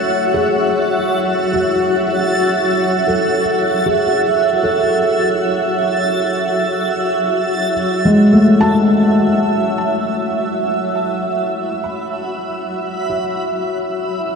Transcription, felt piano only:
0.00 1.72 A3 medium
0.34 3.41 G#4 medium
1.54 4.61 F#4 medium
3.08 4.01 A4 medium
3.86 4.79 G#4 medium
4.63 7.70 A4 medium
8.05 11.13 G#3 medium
8.33 11.40 A3 medium
8.61 11.68 A5 medium
11.84 14.35 B5 medium
13.10 14.35 F#4 medium

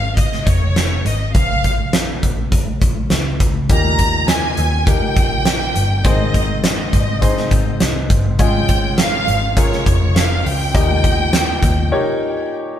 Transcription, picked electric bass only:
0.00 0.29 G#1 medium
0.47 1.01 F1 medium
1.05 1.32 G#1 medium
1.35 2.19 A#1 medium
2.23 2.78 A#1 medium
2.82 3.09 A#1 medium
3.11 3.38 C#2 medium
3.40 3.67 C#2 medium
3.69 4.54 D#2 medium
4.58 4.99 D#2 medium
5.17 5.71 A#1 medium
5.76 6.03 G1 medium
6.04 6.89 G#1 medium
6.94 7.48 G#1 medium
7.51 7.79 G#1 medium
7.81 8.08 C2 medium
8.10 8.37 G1 medium
8.39 9.23 G#1 medium
9.28 9.69 G#1 medium
9.86 10.41 F1 medium
10.45 10.72 C#2 medium
10.75 11.59 D#2 loud
11.63 11.90 D#2 medium

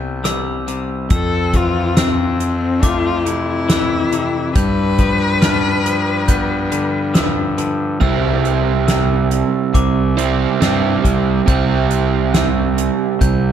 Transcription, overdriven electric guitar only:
8.00 10.14 C3 medium
8.00 10.15 G3 medium
8.00 10.17 C4 medium
8.00 10.17 E4 medium
10.17 10.59 C3 medium
10.17 10.58 G3 medium
10.17 10.61 C4 medium
10.17 10.62 E4 medium
10.60 11.44 C3 medium
10.60 11.45 G3 medium
10.60 11.48 C4 medium
10.60 11.48 E4 medium
11.46 13.52 C3 medium
11.46 13.52 G3 medium
11.46 13.52 C4 medium
11.46 13.52 E4 medium

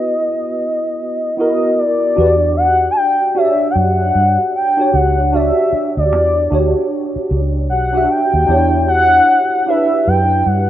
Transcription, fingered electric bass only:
2.18 2.88 E2 loud
3.76 4.10 F#2 medium
4.15 4.36 G2 medium
4.94 5.50 C#2 medium
5.73 muted fingered electric bass stroke soft
5.97 6.12 D2 medium
6.12 6.47 E2 loud
6.52 6.73 D2 medium
7.16 muted fingered electric bass stroke soft
7.31 7.70 C#2 medium
7.70 8.05 B1 loud
8.34 8.47 D#2 medium
8.49 9.19 E2 medium
10.07 10.42 F#2 medium
10.46 10.68 G2 medium

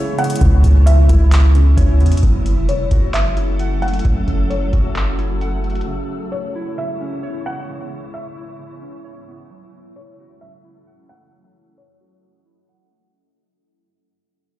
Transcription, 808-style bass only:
0.00 0.37 C#3 loud
0.41 0.63 C#2 loud
0.64 1.08 C#2 loud
1.10 1.75 C#2 loud
1.77 2.02 C#2 loud
2.00 2.22 E2 loud
2.23 2.59 F#1 loud
2.57 2.90 E1 loud
2.91 4.01 F#1 loud
4.05 4.27 F#1 loud
4.28 4.71 F#1 loud
4.73 5.83 F#1 loud

